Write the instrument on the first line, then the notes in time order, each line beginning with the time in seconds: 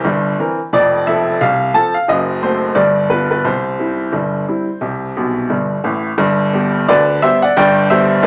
upright piano
Already playing: C5
0.05 G1 G2
0.39 E3 C4 A#4
0.73 F1 F2 D5
1.07 F3 C4 A4 E5
1.41 C2 C3 F5
1.74 F3 C4 A4 A5
1.94 F5
2.08 F#1 F#2 D#5
2.43 A3 C4 F#4 C5
2.75 G1 G2 D5
3.10 G3 B3 F4 B4
3.31 B4
3.45 C2 C3 C5
3.79 G3 C4 E4
4.13 G1 G2
4.48 G3 C4 E4
4.81 C2 C3
5.17 B1 B2
5.50 G1 G2
5.84 A1 A2
6.18 G1 G2
6.53 G3 B3 G4
6.88 D2 D3 B4 D5
7.22 G3 B3 G4 C5 E5
7.42 D5 F#5
7.56 G1 G2 D5 G5
7.90 G3 B3 G4 C5 E5
8.23 D2 D3 B4 D5